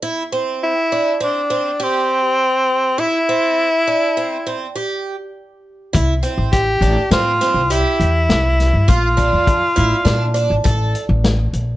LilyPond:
<<
  \new Staff \with { instrumentName = "Tenor saxophone" } { \time 5/4 \key c \mixolydian \tempo 4 = 102 r4 e'4 d'4 c'2 | e'2. r2 | r4 g'4 f'4 e'2 | f'2. r2 | }
  \new Staff \with { instrumentName = "Twelve-string acoustic guitar" } { \time 5/4 \key c \mixolydian e'8 c'4 d'8 c'8 c'8 g'4 r4 | e'8 c'4 d'8 c'8 c'8 g'4 r4 | e'8 c'4 d'8 c'8 c'8 g'4 r4 | f'8 d'4 e'8 d'8 d'8 a'4 r4 | }
  \new Staff \with { instrumentName = "Upright bass" } { \clef bass \time 5/4 \key c \mixolydian r1 r4 | r1 r4 | c,8 r16 a,,8. a,,16 r16 a,8 r16 c,8 r16 e,8 c,8. g,16 | bes,,8. f,8 r16 a,,16 r16 bes,8. a,,16 a,,8 r16 a,,8. bes,,8 | }
  \new DrumStaff \with { instrumentName = "Drums" } \drummode { \time 5/4 r4 r4 r4 r4 r4 | r4 r4 r4 r4 r4 | <hh bd>8 hh8 <hh bd>8 hh8 <hh sn>8 <hh sn>8 hh8 hh8 <hh sn>8 <hh sn>8 | <hh bd>8 <hh bd>8 <hh bd>8 hh8 <hh sn>8 hh8 <hh bd>8 hh8 <hh sn>8 hh8 | }
>>